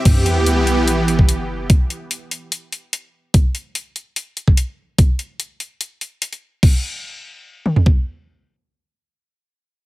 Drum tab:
CC |x---------------|----------------|----------------|----------------|
HH |x-x-x-x-x-x-x---|x-x-x-x-x-x-x---|x-x-x-x-x-x-x---|x-x-x-x-x-x-xx--|
T2 |----------------|----------------|----------------|----------------|
FT |----------------|----------------|----------------|----------------|
BD |o----------o----|o---------------|o----------o----|o---------------|

CC |x---------------|----------------|
HH |----------------|----------------|
T2 |----------o-----|----------------|
FT |-----------o----|----------------|
BD |o-----------o---|----------------|